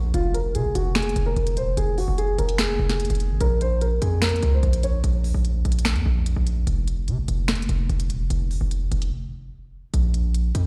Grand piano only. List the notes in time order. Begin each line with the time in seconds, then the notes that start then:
0.14 F4
0.34 A#4
0.55 G#4
0.75 F#4
0.96 G#4
1.26 A#4
1.57 C5
1.77 G#4
1.98 F#4
2.18 G#4
2.38 A#4
2.59 G#4
2.90 G#4
3.41 A#4
3.61 C5
3.82 A#4
4.02 G#4
4.22 A#4
4.53 C5
4.84 C#5